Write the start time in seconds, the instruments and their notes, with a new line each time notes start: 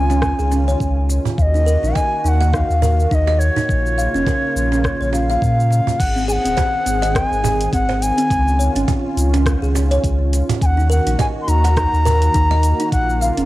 Already playing: sub bass C#2, analog synth pad D#3 C#4 F4, bansuri G#5
0.10 kalimba C#4, cajon slap, shaker
0.22 kick, cross-stick, shaker
0.39 sub bass C#2, kalimba G#4, shaker
0.51 kalimba C#4, cajon slap, shaker
0.68 kalimba C#5, cajon slap, shaker
0.80 sub bass C#2, kick, shaker
1.09 cajon slap, shaker
1.25 cajon bass, shaker
1.37 sub bass D#2, analog synth pad D#3 A#3 F#4, bansuri F5, kick, shaker
1.42 bansuri D#5
1.54 kalimba D#4, shaker
1.66 kalimba A#4, shaker
1.83 sub bass A#1, kalimba D#4, shaker
1.95 kalimba D#5, bansuri G#5, kick, cajon slap, shaker
2.24 sub bass D#2, kalimba D#4, bansuri G#5, shaker
2.28 bansuri F#5
2.41 kalimba F#5, cajon slap, shaker
2.53 kalimba D#4, bansuri F5, kick, cross-stick, shaker
2.70 sub bass D#2, shaker
2.82 kalimba A#4, cajon bass, shaker
3.00 shaker
3.10 sub bass D#2, kalimba D#4, bansuri F5, kick, shaker
3.14 bansuri D#5
3.27 kalimba D#5, cajon slap
3.39 bansuri C#5, shaker
3.56 kalimba D#4, cajon bass, shaker
3.69 sub bass A#1, analog synth pad C#3 A#3 F4, kick, shaker
3.86 shaker
3.98 kalimba F5, shaker
4.14 sub bass F1, kalimba C#4, shaker
4.27 kalimba A#4, cajon bass, kick, cajon slap, shaker
4.56 sub bass A#1, shaker
4.72 kalimba C#4, cajon slap, shaker
4.84 kick, cross-stick, shaker
5.01 sub bass A#1, kalimba C#5, shaker
5.13 kalimba C#4, bansuri F5, cajon slap, shaker
5.30 kalimba F5, cajon slap, shaker
5.42 sub bass A#2, kick, shaker
5.60 shaker
5.70 cajon slap, shaker
5.87 cajon bass, shaker
5.99 sub bass G#1, analog synth pad D#3 C4 G#4, bansuri F#5, kick, closed hi-hat, crash, shaker
6.16 kalimba C4, shaker
6.28 kalimba G#4, bansuri F#5 G#5, shaker
6.45 sub bass D#1, kalimba C4, closed hi-hat, shaker
6.57 kalimba C5, kick, cajon bass, cajon slap, closed hi-hat, shaker
6.86 sub bass G#1, kalimba C4, closed hi-hat, shaker
7.02 kalimba D#5, cajon slap, closed hi-hat, shaker
7.15 kalimba C4, bansuri G5, kick, cross-stick, closed hi-hat, shaker
7.26 bansuri G#5
7.31 sub bass G#1, shaker
7.44 kalimba G#4, cajon bass, shaker
7.61 closed hi-hat, shaker
7.73 sub bass G#1, kalimba C4, bansuri F#5, kick, closed hi-hat, shaker
7.89 kalimba C5, cajon slap
8.02 bansuri G#5, closed hi-hat, shaker
8.18 kalimba C4, closed hi-hat, shaker
8.30 sub bass C#2, analog synth pad C#4 F4, kick, closed hi-hat, shaker
8.48 shaker
8.59 kalimba C#5, shaker
8.75 sub bass G#1, kalimba C#4, closed hi-hat, shaker
8.88 kalimba F4, cajon bass, kick, cajon slap, closed hi-hat, shaker
9.17 sub bass C#2, closed hi-hat, shaker
9.34 kalimba C#4, cajon slap, closed hi-hat, shaker
9.46 kick, cross-stick, closed hi-hat, shaker
9.62 sub bass C#2, kalimba G#4, shaker
9.75 kalimba C#4, cajon slap, shaker
9.91 kalimba C#5, cajon slap, closed hi-hat, shaker
10.04 sub bass C#2, kick, closed hi-hat, shaker
10.33 cajon slap, closed hi-hat, shaker
10.49 cajon bass, closed hi-hat, shaker
10.62 sub bass D#2, analog synth pad D#3 A#3 F#4, bansuri G#5, kick, closed hi-hat, shaker
10.66 bansuri F#5
10.77 kalimba D#4, shaker
10.90 kalimba A#4, bansuri F#5, shaker
11.06 sub bass A#1, kalimba D#4, closed hi-hat, shaker
11.19 kalimba D#5, bansuri G#5, cajon bass, kick, cajon slap, closed hi-hat, shaker
11.42 bansuri C6
11.48 sub bass D#2, kalimba D#4, bansuri A#5, closed hi-hat, shaker
11.64 kalimba F#5, cajon slap, closed hi-hat, shaker
11.76 kalimba D#4, kick, cross-stick, closed hi-hat, shaker
11.93 sub bass D#2, shaker
12.05 kalimba A#4, cajon bass, shaker
12.22 closed hi-hat, shaker
12.34 sub bass D#2, kalimba D#4, kick, closed hi-hat, shaker
12.51 kalimba D#5, cajon slap
12.63 closed hi-hat, shaker
12.80 kalimba D#4, closed hi-hat, shaker
12.92 sub bass A#1, analog synth pad C#3 F4, bansuri F#5, kick, closed hi-hat, shaker
13.10 shaker
13.21 bansuri F5, kalimba F5, shaker
13.37 sub bass F1, kalimba C#4, closed hi-hat, shaker